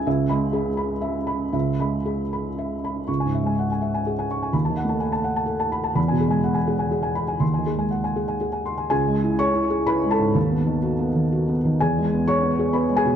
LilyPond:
<<
  \new Staff \with { instrumentName = "Felt piano" } { \time 3/4 \key cis \minor \tempo 4 = 124 e''8 b''8 gis'8 b''8 e''8 b''8 | e''8 b''8 gis'8 b''8 e''8 b''8 | cis'''16 gis''16 e''16 gis''16 fis''16 gis''16 e''16 gis''16 gis'16 gis''16 cis'''16 gis''16 | b''16 a''16 fis''16 a''16 gis''16 a''16 fis''16 a''16 a'16 a''16 b''16 a''16 |
b''16 gis''16 gis'16 gis''16 fis''16 gis''16 gis'16 gis''16 gis'16 gis''16 b''16 gis''16 | bis''16 gis''16 gis'16 gis''16 fis''16 gis''16 gis'16 gis''16 gis'16 gis''16 bis''16 gis''16 | <gis' gis''>4 <cis'' cis'''>4 <b' b''>8 <a' a''>8~ | <a' a''>2~ <a' a''>8 r8 |
<gis' gis''>4 <cis'' cis'''>4 <b' b''>8 <gis' gis''>8 | }
  \new Staff \with { instrumentName = "Felt piano" } { \clef bass \time 3/4 \key cis \minor cis,8 gis4 r4. | cis,8 gis4 r4. | \tuplet 3/2 { cis,8 gis,8 gis8 } r2 | \tuplet 3/2 { dis,8 dis8 a8 } r2 |
\tuplet 3/2 { e,8 b,8 gis8 } r2 | \tuplet 3/2 { dis,8 dis8 gis8 } r2 | \tuplet 3/2 { cis,8 gis8 e'8 gis'8 e'8 gis'8 e'8 gis8 gis,8 } | \tuplet 3/2 { dis,8 b8 dis8 fis'8 b8 dis8 fis'8 b8 dis8 } |
\tuplet 3/2 { e,8 gis8 b8 gis'8 b8 gis'8 b8 gis8 b,8 } | }
>>